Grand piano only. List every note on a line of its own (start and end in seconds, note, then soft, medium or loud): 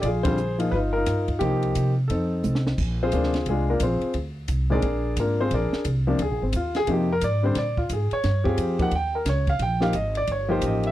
0.02 0.24 F4 medium
0.02 0.26 G#4 medium
0.02 0.07 D5 medium
0.23 0.36 D3 medium
0.23 0.36 G3 medium
0.23 0.36 C4 medium
0.23 0.37 F4 medium
0.23 0.56 C5 medium
0.28 0.70 G#4 medium
0.58 0.70 F3 medium
0.58 0.70 A#3 medium
0.58 0.71 D#4 medium
0.58 0.71 F4 medium
0.71 0.95 D#4 medium
0.71 0.95 F4 medium
0.71 0.76 B4 medium
0.93 1.39 D#4 medium
0.93 1.39 F4 medium
0.93 1.25 A#4 medium
1.39 1.92 F3 medium
1.39 1.93 A#3 medium
1.39 1.93 D#4 medium
1.39 1.92 G4 medium
2.08 2.75 C4 soft
2.08 2.74 D#4 soft
2.08 2.61 A4 medium
3.03 3.45 C4 medium
3.03 3.45 F4 medium
3.03 3.45 G#4 medium
3.03 3.45 C5 medium
3.12 3.32 C3 soft
3.12 3.32 F3 soft
3.12 3.32 A#3 medium
3.12 3.33 D4 medium
3.49 3.69 G#3 medium
3.49 3.69 D4 medium
3.49 3.68 F4 medium
3.49 3.69 G#4 medium
3.70 3.81 A#3 medium
3.70 3.81 D4 medium
3.70 3.81 F4 medium
3.70 3.81 A#4 medium
3.83 4.14 C4 medium
3.83 4.14 F4 medium
3.83 4.14 G#4 soft
3.83 4.14 C5 medium
4.70 4.82 A#2 medium
4.70 4.82 D#3 medium
4.70 4.82 G#3 medium
4.70 4.82 C4 medium
4.70 5.15 D4 medium
4.70 5.15 G#4 medium
4.70 5.15 A#4 medium
4.70 5.15 D5 medium
5.20 5.40 A#3 soft
5.20 5.40 D4 medium
5.20 5.39 F4 medium
5.20 5.40 A#4 medium
5.40 5.52 C4 medium
5.40 5.52 F4 medium
5.40 5.52 G#4 medium
5.40 5.52 C5 medium
5.54 5.84 D4 medium
5.54 5.84 G#4 medium
5.54 5.85 A#4 medium
5.54 5.84 D5 medium
6.07 6.18 C3 medium
6.07 6.18 F3 medium
6.07 6.18 A#3 medium
6.07 6.19 D4 medium
6.22 6.42 G#4 medium
6.43 6.54 C4 medium
6.56 6.76 F4 medium
6.76 6.88 G#4 loud
6.87 7.07 C3 medium
6.87 7.07 F3 medium
6.87 7.07 A#3 medium
6.87 7.08 D#4 medium
6.92 7.11 G4 medium
7.13 7.23 A#4 loud
7.24 7.44 D5 medium
7.43 7.54 D3 medium
7.43 7.54 G3 medium
7.43 7.55 C4 soft
7.43 7.55 D4 medium
7.43 7.56 C5 medium
7.58 7.78 D5 medium
7.78 7.90 F4 medium
7.93 8.12 G#4 medium
8.13 8.55 C#5 medium
8.44 8.77 C4 medium
8.44 8.77 F4 medium
8.44 8.77 G4 medium
8.44 8.77 G#4 medium
8.79 8.90 F3 medium
8.79 8.90 A#3 medium
8.79 8.90 D#4 soft
8.79 8.91 G4 medium
8.79 8.93 F#5 medium
8.95 9.15 G5 medium
9.15 9.26 A#4 medium
9.29 9.49 C#5 medium
9.50 9.61 F5 medium
9.62 9.82 G5 medium
9.80 9.92 F3 medium
9.80 9.92 A#3 medium
9.80 9.93 D#4 medium
9.80 9.93 G4 medium
9.80 9.94 F5 medium
9.95 10.16 D#5 medium
10.17 10.28 D5 medium
10.32 10.51 C#5 medium
10.48 10.91 F3 medium
10.48 10.91 A#3 medium
10.48 10.91 D#4 medium
10.48 10.91 G4 medium
10.48 10.63 C5 medium
10.65 10.85 D#5 medium
10.87 10.91 E5 medium